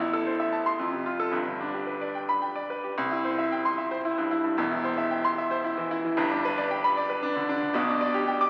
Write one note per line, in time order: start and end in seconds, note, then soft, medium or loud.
0.00 0.76 A1 medium
0.00 0.82 E2 medium
0.00 0.21 E4 medium
0.13 0.34 A4 medium
0.27 0.47 C5 medium
0.40 0.61 E5 medium
0.53 0.74 A5 medium
0.66 0.79 C6 loud
0.79 1.32 F2 medium
0.93 1.14 C3 medium
1.06 1.28 F4 medium
1.20 1.33 A4 medium
1.31 2.93 G1 medium
1.31 2.94 G2 medium
1.46 1.68 D3 medium
1.60 1.82 D4 medium
1.74 1.96 G4 medium
1.87 2.10 B4 medium
2.01 2.24 D5 medium
2.15 2.37 G5 medium
2.29 2.51 B5 medium
2.42 2.65 G5 medium
2.56 2.78 D5 medium
2.70 2.93 B4 medium
2.83 2.98 G4 medium
2.98 4.54 C2 loud
3.11 3.33 E4 medium
3.25 3.46 C5 medium
3.38 3.60 E5 medium
3.52 3.73 G5 medium
3.65 3.86 C6 loud
3.78 4.00 E5 medium
3.91 4.13 C5 medium
4.05 4.26 E4 medium
4.18 4.39 G2 medium
4.31 4.53 E4 medium
4.44 4.58 G2 medium
4.57 6.13 E1 medium
4.57 6.14 E2 loud
4.71 4.92 E4 medium
4.84 5.06 C5 medium
4.98 5.19 E5 medium
5.11 5.32 G5 medium
5.24 5.46 C6 loud
5.38 5.59 E5 medium
5.51 5.72 C5 medium
5.64 5.86 E4 medium
5.78 5.99 E3 medium
5.91 6.12 E4 medium
6.05 6.18 E3 medium
6.17 7.71 G1 loud
6.17 7.71 G2 loud
6.31 6.52 D4 medium
6.45 6.66 B4 medium
6.58 6.79 D5 medium
6.71 6.92 G5 medium
6.84 7.05 B5 loud
6.97 7.18 D5 medium
7.10 7.30 B4 medium
7.23 7.43 D4 medium
7.36 7.57 D3 medium
7.49 7.70 D4 medium
7.62 7.75 D3 medium
7.74 8.50 B1 loud
7.74 8.50 B2 loud
7.88 8.09 D4 medium
8.01 8.22 D5 medium
8.14 8.35 G4 loud
8.28 8.49 G5 medium
8.41 8.50 D6 loud